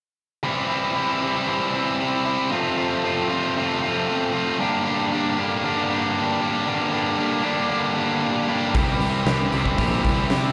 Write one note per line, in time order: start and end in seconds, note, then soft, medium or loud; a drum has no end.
0.43 0.95 C3 medium
0.43 0.94 E3 medium
0.43 0.69 G3 medium
0.43 0.69 C4 medium
0.43 0.67 E4 medium
0.68 0.94 G3 soft
0.68 0.96 C4 medium
0.68 0.95 E4 medium
0.95 1.46 E3 medium
0.95 1.22 G3 medium
0.95 1.22 C4 medium
0.95 1.20 E4 medium
1.21 2.50 C3 medium
1.21 1.47 G3 soft
1.21 1.48 C4 medium
1.21 1.48 E4 medium
1.47 2.00 C3 medium
1.47 2.00 E3 medium
1.47 1.74 G3 medium
1.47 1.74 C4 medium
1.47 1.72 E4 medium
1.73 2.26 G3 medium
1.73 2.25 C4 medium
1.73 2.24 E4 medium
2.25 2.51 G3 medium
2.25 2.51 C4 medium
2.25 2.50 E4 medium
2.51 3.03 F2 medium
2.51 3.04 C3 medium
2.51 2.78 F3 medium
2.51 2.77 A3 medium
2.51 2.77 C4 medium
2.51 2.76 F4 medium
2.77 3.02 F3 soft
2.77 3.03 A3 medium
2.77 3.04 C4 medium
2.77 3.04 F4 medium
3.03 3.31 F3 medium
3.03 3.30 A3 medium
3.03 3.29 C4 medium
3.03 3.29 F4 medium
3.30 4.58 F2 medium
3.30 4.58 C3 medium
3.30 3.56 F3 soft
3.30 3.56 A3 medium
3.30 3.57 C4 medium
3.30 3.57 F4 medium
3.56 4.08 F2 medium
3.56 4.08 C3 medium
3.56 3.83 F3 medium
3.56 3.82 A3 medium
3.56 3.81 C4 loud
3.56 3.81 F4 medium
3.82 4.34 F3 medium
3.82 4.34 A3 medium
3.82 4.33 C4 medium
3.82 4.32 F4 medium
4.33 4.59 F3 medium
4.33 4.59 A3 medium
4.33 4.58 C4 medium
4.33 4.58 F4 medium
4.59 5.64 G2 medium
4.59 5.12 D3 medium
4.59 4.87 G3 medium
4.59 4.86 A#3 medium
4.59 4.85 D4 loud
4.59 4.84 G4 medium
4.85 5.11 G3 medium
4.85 5.12 A#3 medium
4.85 5.12 D4 medium
4.85 5.13 G4 medium
5.11 5.39 G3 medium
5.11 5.39 A#3 medium
5.11 5.38 D4 medium
5.11 5.38 G4 medium
5.38 6.65 G2 medium
5.38 6.66 D3 medium
5.38 5.64 G3 medium
5.38 5.63 A#3 medium
5.38 5.64 D4 medium
5.38 5.65 G4 medium
5.64 6.16 G2 medium
5.64 6.16 D3 medium
5.64 5.91 G3 medium
5.64 5.89 A#3 medium
5.64 5.89 D4 medium
5.64 5.88 G4 medium
5.89 6.42 G3 medium
5.89 6.41 A#3 medium
5.89 6.40 D4 medium
5.89 6.40 G4 medium
6.40 6.67 G3 medium
6.40 6.66 A#3 medium
6.40 6.67 D4 medium
6.40 6.68 G4 medium
6.66 7.19 G2 medium
6.66 7.19 D3 medium
6.66 6.95 G3 medium
6.66 6.93 A#3 medium
6.66 6.92 D4 medium
6.66 6.92 G4 medium
6.93 7.17 G3 medium
6.93 7.17 A#3 medium
6.93 7.18 D4 medium
6.93 7.20 G4 medium
7.18 7.45 G3 medium
7.18 7.43 A#3 medium
7.18 7.43 D4 medium
7.18 7.43 G4 medium
7.43 8.74 G2 medium
7.43 8.73 D3 medium
7.43 7.70 G3 medium
7.43 7.70 A#3 medium
7.43 7.70 D4 medium
7.43 7.71 G4 medium
7.69 8.22 G2 medium
7.69 8.23 D3 medium
7.69 7.97 G3 medium
7.69 7.96 A#3 medium
7.69 7.95 D4 medium
7.69 7.95 G4 medium
7.96 8.49 G3 medium
7.96 8.48 A#3 medium
7.96 8.48 D4 medium
7.96 8.47 G4 medium
8.48 8.74 G3 medium
8.48 8.74 A#3 medium
8.48 8.74 D4 medium
8.48 8.73 G4 medium
8.73 8.98 C2 medium
8.73 9.26 C3 medium
8.73 9.24 E3 medium
8.73 9.01 G3 medium
8.73 9.00 C4 medium
8.73 9.50 E4 medium
8.73 8.98 G4 medium
8.73 kick loud
8.73 open hi-hat medium
8.99 9.23 C2 medium
8.99 9.25 G3 soft
8.99 9.27 C4 medium
8.99 9.27 G4 medium
8.99 open hi-hat soft
9.25 9.49 C2 medium
9.25 9.76 E3 medium
9.25 9.52 G3 medium
9.25 9.52 C4 medium
9.25 9.50 G4 medium
9.25 snare loud
9.25 open hi-hat medium
9.51 9.76 C2 medium
9.51 10.52 C3 medium
9.51 9.77 G3 medium
9.51 9.77 C4 medium
9.51 10.52 E4 medium
9.51 9.78 G4 medium
9.51 open hi-hat soft
9.65 kick medium
9.77 10.02 A#1 medium
9.77 10.30 C3 medium
9.77 10.30 E3 medium
9.77 10.04 G3 medium
9.77 10.03 C4 medium
9.77 10.02 G4 medium
9.77 kick medium
9.77 open hi-hat medium
10.03 10.28 C2 medium
10.03 10.52 G3 medium
10.03 10.52 C4 medium
10.03 10.52 G4 medium
10.03 kick medium
10.03 open hi-hat soft
10.30 10.52 C3 medium
10.30 snare medium
10.30 open hi-hat medium